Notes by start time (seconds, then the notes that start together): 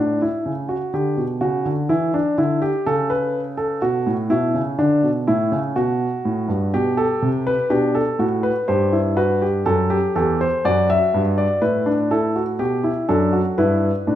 Already playing: A2 D4
0.22 E4
0.46 C#3
0.69 F#4
0.94 D3 G4
1.17 B2
1.41 C#3 F#4
1.65 D3
1.89 E3 E4
2.14 D4
2.38 D3 E4
2.62 G4
2.86 C#3 A4
3.10 B4
3.57 A4
3.82 B2 F#4
4.07 A2
4.30 B2 E4
4.54 C#3
4.78 D3 D4
5.03 B2
5.28 A2 E4
5.52 C#3
5.76 B2 F#4
6.25 A2
6.48 G2
6.74 B2 G4
6.97 A4
7.22 C3
7.47 B4
7.70 B2 D4 G4
7.95 A4
8.19 A2 F#4
8.43 B4
8.68 G2 G4 C5
8.92 E4
9.17 F#4 B4
9.42 G4
9.66 F#2 A4
9.90 G4
10.15 E2 G4 A4
10.41 C5
10.65 F#2 F#4 D5
10.90 E5
11.14 G2
11.38 D5
11.62 A2 E4 B4
11.86 D4
12.11 E4 A4
12.36 F#4
12.59 B2 G4
12.84 E4
13.09 F#2 D4 A4
13.33 F#4
13.58 G2 E4 B4
14.07 A2 D4